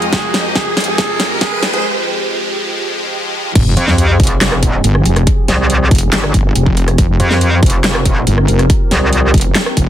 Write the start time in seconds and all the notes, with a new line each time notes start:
Already playing: F2 F3 G#3 F4 G4 A#4 D#5, riser
0.02 closed hi-hat
0.13 G#4, kick, snare, closed hi-hat
0.34 snare, closed hi-hat
0.55 G#4, kick, snare, closed hi-hat
0.77 snare, closed hi-hat
0.80 closed hi-hat
0.84 G#4, closed hi-hat
0.98 G#4, kick, snare, closed hi-hat
1.20 snare, closed hi-hat
1.41 G#4, kick, snare, closed hi-hat
1.63 snare, closed hi-hat
1.73 G#4, closed hi-hat
3.55 F1 F3 C4 G4 G#4, kick, closed hi-hat, crash, sub drop
3.77 F2, closed hi-hat
3.88 snare
3.98 closed hi-hat
4.20 F1, kick, closed hi-hat
4.23 closed hi-hat
4.27 closed hi-hat
4.41 snare, clap, closed hi-hat
4.52 cross-stick
4.63 kick, closed hi-hat
4.84 G1, closed hi-hat
4.95 cross-stick
5.05 F1, closed hi-hat
5.16 cross-stick, closed hi-hat
5.27 kick, closed hi-hat
5.48 C2, snare, closed hi-hat
5.70 closed hi-hat
5.91 F1, kick, closed hi-hat
5.95 closed hi-hat
5.98 closed hi-hat
6.13 G1, snare, clap, closed hi-hat
6.24 cross-stick
6.34 G1, kick, closed hi-hat
6.55 F1, closed hi-hat
6.66 kick
6.77 closed hi-hat
6.88 cross-stick, closed hi-hat
6.98 F1 A#4, kick, closed hi-hat
7.20 F2, closed hi-hat
7.31 snare
7.41 closed hi-hat
7.63 F1, kick, closed hi-hat
7.66 closed hi-hat
7.70 closed hi-hat
7.84 snare, clap, closed hi-hat
7.95 cross-stick
8.05 E1, kick, closed hi-hat
8.27 G1, closed hi-hat
8.38 cross-stick
8.48 F1, closed hi-hat
8.59 cross-stick, closed hi-hat
8.70 kick, closed hi-hat
8.91 C2, snare, closed hi-hat
9.13 closed hi-hat
9.34 F1, kick, closed hi-hat
9.38 closed hi-hat
9.41 closed hi-hat
9.55 snare, clap, closed hi-hat
9.66 cross-stick
9.77 F1, kick, closed hi-hat